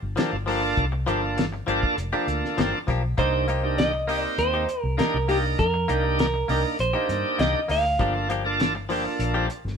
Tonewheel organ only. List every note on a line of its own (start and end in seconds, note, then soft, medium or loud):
0.17 0.36 A#3 medium
0.17 0.36 D4 medium
0.17 0.37 F4 medium
0.17 0.37 A4 medium
0.47 0.85 A#3 medium
0.47 0.85 D4 medium
0.47 0.85 F4 medium
0.47 0.86 A4 medium
1.07 1.45 A#3 medium
1.07 1.45 D4 medium
1.07 1.46 F4 medium
1.07 1.46 A4 medium
1.67 1.96 A#3 medium
1.67 1.96 D4 medium
1.67 1.96 F4 medium
1.67 1.96 A4 medium
2.12 2.78 A#3 medium
2.12 2.79 D4 medium
2.12 2.79 F4 medium
2.12 2.79 A4 medium
3.18 3.46 A#3 medium
3.18 3.46 D4 medium
3.18 3.47 D#4 medium
3.18 3.47 G4 medium
3.63 3.92 A#3 medium
3.63 3.92 D4 medium
3.63 3.92 D#4 medium
3.63 3.92 G4 medium
4.07 4.64 A#3 medium
4.07 4.65 C4 medium
4.07 4.65 D#4 medium
4.07 4.65 G4 medium
4.97 5.17 A#3 medium
4.97 5.17 D4 medium
4.97 5.18 D#4 medium
4.97 5.18 G4 medium
5.28 5.66 A#3 medium
5.28 5.67 D4 medium
5.28 5.67 D#4 medium
5.28 5.67 A#4 medium
5.88 6.27 A#3 medium
5.88 6.27 D4 medium
5.88 6.27 D#4 medium
5.88 6.27 G4 medium
6.49 6.77 A#3 medium
6.49 6.77 D4 medium
6.49 6.78 D#4 medium
6.49 6.78 A#4 medium
6.94 7.60 A#3 medium
6.94 7.60 D4 medium
6.94 7.60 D#4 medium
6.94 7.61 G4 medium
8.00 8.28 A#3 medium
8.00 8.28 D4 medium
8.00 8.28 F4 medium
8.00 8.28 A4 medium
8.45 8.73 A#3 medium
8.45 8.73 D4 medium
8.45 8.74 F4 medium
8.45 8.74 A4 medium
8.89 9.46 A#3 medium
8.89 9.46 D4 medium
8.89 9.47 F4 medium
8.89 9.47 A4 medium